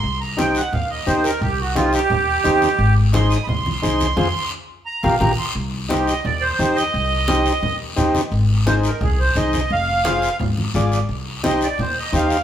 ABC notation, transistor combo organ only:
X:1
M:4/4
L:1/8
Q:1/4=174
K:Cm
V:1 name="Transistor combo organ"
z2 [EGc] z3 [EGc] z | z2 [EGc] z3 [EGc] z | z2 [EAc] z3 [EAc] z | [FAc] z4 [FGB] [FGB] z |
z2 [EGc] z3 [EGc] z | z2 [EGc] z3 [EGc] z | z2 [EAc] z3 [EAc] z | z2 [FAc] z3 [FAd] z |
z2 [EGc] z3 [EGc] z |]